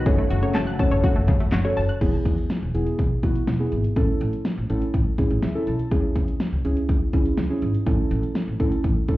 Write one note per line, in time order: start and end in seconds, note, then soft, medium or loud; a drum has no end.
0.00 1.97 F#4 medium
0.06 0.17 F#1 loud
0.06 0.17 C#3 loud
0.06 1.99 C#3 medium
0.06 1.99 F#3 medium
0.06 1.99 A3 medium
0.06 0.25 C#4 medium
0.06 0.25 F#4 medium
0.06 0.25 A4 medium
0.06 0.25 C#5 loud
0.06 kick loud
0.06 closed hi-hat medium
0.18 0.29 A3 medium
0.30 0.41 F#1 loud
0.30 0.41 F#4 medium
0.30 closed hi-hat medium
0.43 0.62 C#4 medium
0.43 0.62 F#4 medium
0.43 0.62 A4 medium
0.43 0.62 C#5 loud
0.43 0.54 C#5 medium
0.43 closed hi-hat medium
0.55 0.66 F#1 loud
0.55 0.66 A5 medium
0.55 snare loud
0.55 clap loud
0.55 closed hi-hat medium
0.67 0.78 F#6 medium
0.79 0.90 F#1 loud
0.79 1.24 C#4 medium
0.79 1.24 F#4 medium
0.79 1.24 A4 medium
0.79 1.24 C#5 medium
0.79 0.90 A5 medium
0.79 kick medium
0.79 closed hi-hat medium
0.91 1.02 F#1 loud
0.91 1.02 C#5 medium
0.91 closed hi-hat medium
1.04 1.15 F#4 loud
1.04 kick medium
1.04 closed hi-hat medium
1.16 1.27 F#1 loud
1.16 1.27 A3 medium
1.28 1.39 C#3 medium
1.28 kick medium
1.28 closed hi-hat medium
1.40 1.51 F#2 medium
1.40 1.51 A3 medium
1.40 closed hi-hat medium
1.52 1.63 F#1 loud
1.52 1.63 F#4 medium
1.52 snare loud
1.52 clap loud
1.52 closed hi-hat medium
1.65 1.84 C#4 medium
1.65 1.84 F#4 medium
1.65 1.84 A4 medium
1.65 1.84 C#5 loud
1.65 1.75 C#5 medium
1.77 1.88 F#1 loud
1.77 1.88 A5 medium
1.77 open hi-hat medium
1.89 2.00 F#6 medium
1.89 closed hi-hat medium
2.01 2.12 E1 loud
2.01 2.39 B3 medium
2.01 2.39 E4 medium
2.01 2.39 G#4 medium
2.01 kick loud
2.01 closed hi-hat medium
2.01 crash medium
2.25 2.36 E2 loud
2.25 kick medium
2.25 closed hi-hat medium
2.38 closed hi-hat soft
2.50 snare loud
2.50 closed hi-hat medium
2.62 2.73 E1 medium
2.74 2.85 E1 medium
2.74 2.93 B3 medium
2.74 2.93 E4 medium
2.74 2.93 G#4 medium
2.74 closed hi-hat medium
2.87 closed hi-hat medium
2.99 3.10 E1 loud
2.99 kick medium
2.99 closed hi-hat medium
3.11 3.17 E4 medium
3.11 3.17 G#4 medium
3.23 3.34 E1 medium
3.23 3.42 B3 medium
3.23 3.42 E4 medium
3.23 3.42 F#4 medium
3.23 kick medium
3.23 closed hi-hat medium
3.35 closed hi-hat medium
3.47 3.58 E1 loud
3.47 snare loud
3.47 closed hi-hat medium
3.60 3.79 B3 medium
3.60 3.79 E4 medium
3.60 3.79 G#4 medium
3.72 3.83 G#1 medium
3.72 closed hi-hat medium
3.84 closed hi-hat medium
3.96 4.07 A1 loud
3.96 4.34 C#4 medium
3.96 4.34 E4 medium
3.96 4.34 A4 medium
3.96 kick loud
3.96 closed hi-hat medium
4.21 4.31 A1 loud
4.21 closed hi-hat medium
4.33 closed hi-hat soft
4.45 snare loud
4.45 closed hi-hat medium
4.57 4.68 A1 loud
4.70 4.80 A1 loud
4.70 4.89 C#4 medium
4.70 4.89 E4 medium
4.70 4.89 A4 medium
4.70 closed hi-hat medium
4.82 closed hi-hat medium
4.94 5.05 A1 loud
4.94 kick medium
4.94 closed hi-hat medium
5.06 5.12 E4 medium
5.06 5.12 A4 medium
5.18 5.29 A1 medium
5.18 5.37 C#4 medium
5.18 5.37 E4 medium
5.18 5.37 G#4 medium
5.18 kick medium
5.18 closed hi-hat medium
5.30 5.41 A1 medium
5.30 closed hi-hat medium
5.43 5.53 C#2 medium
5.43 5.65 E5 medium
5.43 snare loud
5.43 closed hi-hat medium
5.55 5.74 C#4 medium
5.55 5.74 E4 medium
5.55 5.74 A4 medium
5.67 5.78 B1 medium
5.67 5.90 A5 medium
5.67 closed hi-hat medium
5.79 closed hi-hat medium
5.91 6.02 C#2 loud
5.91 6.30 C#4 medium
5.91 6.30 E4 medium
5.91 6.30 G#4 medium
5.91 kick loud
5.91 closed hi-hat medium
6.16 6.26 C#3 medium
6.16 kick medium
6.16 closed hi-hat medium
6.28 closed hi-hat soft
6.40 snare loud
6.40 closed hi-hat medium
6.52 6.63 C#2 medium
6.65 6.75 C#2 medium
6.65 6.84 C#4 medium
6.65 6.84 E4 medium
6.65 6.84 G#4 medium
6.65 closed hi-hat medium
6.77 closed hi-hat medium
6.89 7.00 C#2 loud
6.89 kick medium
6.89 closed hi-hat medium
7.01 7.08 E4 medium
7.01 7.08 G#4 medium
7.13 7.24 C#2 loud
7.13 7.32 C#4 medium
7.13 7.32 E4 medium
7.13 7.32 G#4 medium
7.13 kick medium
7.13 closed hi-hat medium
7.26 closed hi-hat medium
7.38 7.49 C#2 medium
7.38 snare loud
7.38 closed hi-hat medium
7.50 7.69 C#4 medium
7.50 7.69 E4 medium
7.50 7.69 G#4 medium
7.62 7.73 G#1 medium
7.62 closed hi-hat medium
7.75 closed hi-hat medium
7.87 7.97 A1 loud
7.87 8.25 C#4 medium
7.87 8.25 E4 medium
7.87 8.25 A4 medium
7.87 kick loud
7.87 closed hi-hat medium
8.11 8.22 A1 loud
8.11 closed hi-hat medium
8.23 closed hi-hat soft
8.35 snare loud
8.35 closed hi-hat medium
8.48 8.58 A1 medium
8.60 8.71 A1 medium
8.60 8.79 C#4 medium
8.60 8.79 E4 medium
8.60 8.79 A4 medium
8.60 kick medium
8.60 closed hi-hat medium
8.72 closed hi-hat medium
8.84 8.95 A1 medium
8.84 kick medium
8.84 closed hi-hat medium
8.96 9.03 E4 medium
8.96 9.03 A4 medium
9.08 9.17 A1 medium
9.08 9.17 C#4 medium
9.08 9.17 E4 medium
9.08 9.17 A4 medium
9.08 kick medium
9.08 closed hi-hat medium